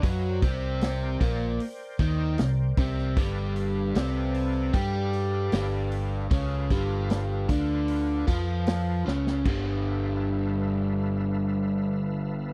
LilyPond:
<<
  \new Staff \with { instrumentName = "Tonewheel organ" } { \time 4/4 \key g \mixolydian \tempo 4 = 76 \tuplet 3/2 { <b' ees'' f'' aes''>8 <bes' c'' d'' g''>4~ } <bes' c'' d'' g''>2. | <a' b' d'' f''>1 | <f' a' b' f''>1 | \tuplet 3/2 { <bes' c'' f'' fis''>8 <a' b' e'' f''>4~ } <a' b' e'' f''>2. | }
  \new Staff \with { instrumentName = "Overdriven electric guitar" } { \clef bass \time 4/4 \key g \mixolydian <fis fis'>8 <c c'>4 <bes, bes>8 r8 <ees ees'>8 c8 <c c'>8 | <g, g>4 <c c'>4 <g g'>4 <g, g>4 | <cis cis'>8 <g, g>4 <d d'>4 <f f'>4 <cis cis'>8 | <g, d g>1 | }
  \new Staff \with { instrumentName = "Fingered electric bass" } { \clef bass \time 4/4 \key g \mixolydian fis,8 c,4 bes,,8 r8 ees,8 c,8 c,8 | g,,4 c,4 g,4 g,,4 | cis,8 g,,4 d,4 f,4 cis,8 | g,,1 | }
  \new DrumStaff \with { instrumentName = "Drums" } \drummode { \time 4/4 <hho bd>8 <hho bd>8 <hho sn>8 <hho bd>8 hho8 <hho bd>8 <hho sn>8 <hho bd>16 sn16 | <hho bd>8 hho8 <hho sn>8 hho8 <hho bd>8 hho8 <hho sn>8 hho8 | <hho bd>8 <hho bd>8 <hho sn>8 <hho bd>8 hho8 <hho bd>8 <hho sn>8 sn16 sn16 | <cymc bd>4 r4 r4 r4 | }
>>